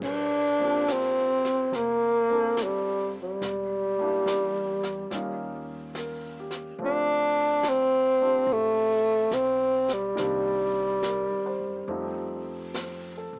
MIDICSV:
0, 0, Header, 1, 5, 480
1, 0, Start_track
1, 0, Key_signature, -2, "major"
1, 0, Tempo, 847458
1, 11, Time_signature, 4, 2, 24, 8
1, 7587, End_track
2, 0, Start_track
2, 0, Title_t, "Grand piano"
2, 0, Program_c, 0, 0
2, 0, Control_c, 0, 64, 127
2, 19, Control_c, 0, 64, 0
2, 120, Control_c, 0, 64, 127
2, 334, Note_on_c, 0, 53, 46
2, 343, Note_on_c, 0, 58, 42
2, 345, Note_on_c, 0, 60, 41
2, 353, Note_on_c, 0, 62, 41
2, 363, Note_on_c, 0, 67, 47
2, 1295, Note_off_c, 0, 60, 0
2, 1303, Note_off_c, 0, 62, 0
2, 1304, Note_on_c, 0, 60, 37
2, 1311, Note_on_c, 0, 62, 33
2, 1318, Note_on_c, 0, 65, 32
2, 1326, Note_on_c, 0, 69, 41
2, 1933, Note_off_c, 0, 53, 0
2, 1936, Note_off_c, 0, 60, 0
2, 1938, Note_off_c, 0, 58, 0
2, 1940, Note_off_c, 0, 62, 0
2, 1943, Note_off_c, 0, 65, 0
2, 1943, Control_c, 0, 64, 0
2, 1948, Note_off_c, 0, 67, 0
2, 1948, Note_off_c, 0, 69, 0
2, 2052, Control_c, 0, 64, 127
2, 2255, Note_on_c, 0, 55, 48
2, 2261, Note_on_c, 0, 58, 41
2, 2268, Note_on_c, 0, 62, 40
2, 2277, Note_on_c, 0, 64, 44
2, 2283, Note_on_c, 0, 67, 52
2, 2880, Note_off_c, 0, 55, 0
2, 2889, Note_on_c, 0, 55, 42
2, 2890, Note_off_c, 0, 58, 0
2, 2897, Note_off_c, 0, 62, 0
2, 2898, Note_on_c, 0, 58, 38
2, 2900, Control_c, 0, 64, 0
2, 2902, Note_off_c, 0, 64, 0
2, 2902, Note_on_c, 0, 61, 39
2, 2905, Note_off_c, 0, 67, 0
2, 2914, Note_on_c, 0, 63, 41
2, 2921, Note_on_c, 0, 65, 46
2, 2993, Control_c, 0, 64, 127
2, 3382, Note_on_c, 0, 70, 40
2, 3624, Note_on_c, 0, 67, 39
2, 3751, Note_off_c, 0, 70, 0
2, 3843, Note_off_c, 0, 55, 0
2, 3844, Note_on_c, 0, 53, 44
2, 3848, Note_off_c, 0, 58, 0
2, 3849, Note_off_c, 0, 61, 0
2, 3852, Note_on_c, 0, 57, 41
2, 3853, Control_c, 0, 64, 0
2, 3855, Note_off_c, 0, 63, 0
2, 3859, Note_off_c, 0, 65, 0
2, 3862, Note_on_c, 0, 60, 39
2, 3868, Note_on_c, 0, 62, 41
2, 3874, Note_on_c, 0, 65, 50
2, 3947, Control_c, 0, 64, 127
2, 3950, Note_off_c, 0, 67, 0
2, 4643, Note_off_c, 0, 60, 0
2, 4645, Note_off_c, 0, 62, 0
2, 4650, Note_off_c, 0, 65, 0
2, 4652, Note_on_c, 0, 60, 39
2, 4654, Note_on_c, 0, 62, 35
2, 4658, Note_on_c, 0, 65, 36
2, 4663, Note_on_c, 0, 67, 41
2, 5752, Note_on_c, 0, 51, 50
2, 5758, Note_off_c, 0, 53, 0
2, 5761, Note_on_c, 0, 58, 45
2, 5762, Note_off_c, 0, 57, 0
2, 5762, Note_off_c, 0, 60, 0
2, 5764, Note_off_c, 0, 62, 0
2, 5766, Note_off_c, 0, 65, 0
2, 5766, Control_c, 0, 64, 0
2, 5768, Note_off_c, 0, 67, 0
2, 5770, Note_on_c, 0, 60, 43
2, 5776, Note_on_c, 0, 62, 44
2, 5779, Note_on_c, 0, 67, 52
2, 5877, Control_c, 0, 64, 127
2, 6252, Note_on_c, 0, 70, 38
2, 6491, Note_on_c, 0, 72, 39
2, 6627, Note_off_c, 0, 70, 0
2, 6718, Note_off_c, 0, 51, 0
2, 6723, Note_off_c, 0, 58, 0
2, 6725, Note_off_c, 0, 60, 0
2, 6729, Note_off_c, 0, 67, 0
2, 6730, Note_off_c, 0, 62, 0
2, 6730, Control_c, 0, 64, 0
2, 6733, Note_on_c, 0, 57, 44
2, 6733, Note_on_c, 0, 60, 42
2, 6734, Note_on_c, 0, 53, 46
2, 6738, Note_on_c, 0, 63, 42
2, 6738, Note_on_c, 0, 67, 50
2, 6825, Note_off_c, 0, 72, 0
2, 6838, Control_c, 0, 64, 127
2, 7223, Note_on_c, 0, 72, 36
2, 7462, Note_on_c, 0, 69, 38
2, 7587, Note_off_c, 0, 53, 0
2, 7587, Note_off_c, 0, 57, 0
2, 7587, Note_off_c, 0, 60, 0
2, 7587, Note_off_c, 0, 63, 0
2, 7587, Note_off_c, 0, 67, 0
2, 7587, Note_off_c, 0, 69, 0
2, 7587, Note_off_c, 0, 72, 0
2, 7587, End_track
3, 0, Start_track
3, 0, Title_t, "Tenor saxophone"
3, 0, Program_c, 1, 66
3, 19, Note_on_c, 1, 62, 88
3, 521, Note_on_c, 1, 60, 79
3, 529, Note_off_c, 1, 62, 0
3, 994, Note_on_c, 1, 58, 79
3, 1002, Note_off_c, 1, 60, 0
3, 1488, Note_on_c, 1, 55, 65
3, 1497, Note_off_c, 1, 58, 0
3, 1796, Note_off_c, 1, 55, 0
3, 1826, Note_on_c, 1, 55, 71
3, 3216, Note_off_c, 1, 55, 0
3, 3881, Note_on_c, 1, 62, 88
3, 4355, Note_on_c, 1, 60, 84
3, 4363, Note_off_c, 1, 62, 0
3, 4828, Note_on_c, 1, 57, 89
3, 4837, Note_off_c, 1, 60, 0
3, 5290, Note_on_c, 1, 60, 80
3, 5298, Note_off_c, 1, 57, 0
3, 5625, Note_on_c, 1, 55, 77
3, 5633, Note_off_c, 1, 60, 0
3, 7060, Note_off_c, 1, 55, 0
3, 7587, End_track
4, 0, Start_track
4, 0, Title_t, "Upright bass"
4, 0, Program_c, 2, 32
4, 8, Note_on_c, 2, 34, 66
4, 953, Note_off_c, 2, 34, 0
4, 975, Note_on_c, 2, 29, 67
4, 1912, Note_off_c, 2, 29, 0
4, 1934, Note_on_c, 2, 28, 69
4, 2390, Note_off_c, 2, 28, 0
4, 2412, Note_on_c, 2, 40, 68
4, 2869, Note_off_c, 2, 40, 0
4, 2894, Note_on_c, 2, 39, 72
4, 3823, Note_off_c, 2, 39, 0
4, 3843, Note_on_c, 2, 38, 73
4, 4774, Note_off_c, 2, 38, 0
4, 4796, Note_on_c, 2, 33, 72
4, 5253, Note_off_c, 2, 33, 0
4, 5273, Note_on_c, 2, 35, 69
4, 5734, Note_off_c, 2, 35, 0
4, 5760, Note_on_c, 2, 36, 75
4, 6378, Note_off_c, 2, 36, 0
4, 6409, Note_on_c, 2, 39, 51
4, 6554, Note_off_c, 2, 39, 0
4, 6568, Note_on_c, 2, 42, 51
4, 6714, Note_off_c, 2, 42, 0
4, 6727, Note_on_c, 2, 41, 72
4, 7514, Note_off_c, 2, 41, 0
4, 7549, Note_on_c, 2, 33, 55
4, 7587, Note_off_c, 2, 33, 0
4, 7587, End_track
5, 0, Start_track
5, 0, Title_t, "Drums"
5, 10, Note_on_c, 9, 36, 58
5, 11, Note_on_c, 9, 25, 30
5, 11, Note_on_c, 9, 38, 23
5, 11, Note_on_c, 9, 51, 53
5, 67, Note_off_c, 9, 36, 0
5, 67, Note_off_c, 9, 38, 0
5, 67, Note_off_c, 9, 51, 0
5, 499, Note_on_c, 9, 38, 39
5, 499, Note_on_c, 9, 44, 45
5, 555, Note_off_c, 9, 38, 0
5, 555, Note_off_c, 9, 44, 0
5, 819, Note_on_c, 9, 38, 24
5, 876, Note_off_c, 9, 38, 0
5, 979, Note_off_c, 9, 25, 0
5, 979, Note_on_c, 9, 25, 30
5, 979, Note_on_c, 9, 38, 24
5, 1035, Note_off_c, 9, 38, 0
5, 1455, Note_on_c, 9, 38, 40
5, 1455, Note_on_c, 9, 44, 45
5, 1512, Note_off_c, 9, 38, 0
5, 1512, Note_off_c, 9, 44, 0
5, 1935, Note_off_c, 9, 25, 0
5, 1935, Note_on_c, 9, 25, 27
5, 1935, Note_on_c, 9, 38, 25
5, 1992, Note_off_c, 9, 38, 0
5, 2420, Note_on_c, 9, 38, 38
5, 2420, Note_on_c, 9, 44, 53
5, 2477, Note_off_c, 9, 38, 0
5, 2477, Note_off_c, 9, 44, 0
5, 2737, Note_on_c, 9, 38, 25
5, 2794, Note_off_c, 9, 38, 0
5, 2895, Note_off_c, 9, 25, 0
5, 2895, Note_on_c, 9, 25, 27
5, 2895, Note_on_c, 9, 38, 26
5, 2952, Note_off_c, 9, 38, 0
5, 3369, Note_on_c, 9, 38, 38
5, 3369, Note_on_c, 9, 44, 51
5, 3426, Note_off_c, 9, 38, 0
5, 3426, Note_off_c, 9, 44, 0
5, 3685, Note_on_c, 9, 38, 23
5, 3742, Note_off_c, 9, 38, 0
5, 3843, Note_off_c, 9, 25, 0
5, 3843, Note_on_c, 9, 25, 32
5, 4323, Note_on_c, 9, 38, 42
5, 4323, Note_on_c, 9, 44, 55
5, 4379, Note_off_c, 9, 38, 0
5, 4379, Note_off_c, 9, 44, 0
5, 4797, Note_off_c, 9, 25, 0
5, 4797, Note_on_c, 9, 25, 33
5, 5276, Note_on_c, 9, 38, 37
5, 5276, Note_on_c, 9, 44, 43
5, 5332, Note_off_c, 9, 38, 0
5, 5332, Note_off_c, 9, 44, 0
5, 5598, Note_on_c, 9, 38, 22
5, 5655, Note_off_c, 9, 38, 0
5, 5761, Note_off_c, 9, 25, 0
5, 5761, Note_on_c, 9, 25, 29
5, 5761, Note_on_c, 9, 38, 26
5, 5817, Note_off_c, 9, 38, 0
5, 6245, Note_on_c, 9, 38, 41
5, 6245, Note_on_c, 9, 44, 43
5, 6302, Note_off_c, 9, 38, 0
5, 6302, Note_off_c, 9, 44, 0
5, 6730, Note_off_c, 9, 25, 0
5, 6730, Note_on_c, 9, 25, 29
5, 7217, Note_on_c, 9, 38, 41
5, 7217, Note_on_c, 9, 44, 48
5, 7273, Note_off_c, 9, 38, 0
5, 7273, Note_off_c, 9, 44, 0
5, 7587, Note_off_c, 9, 25, 0
5, 7587, End_track
0, 0, End_of_file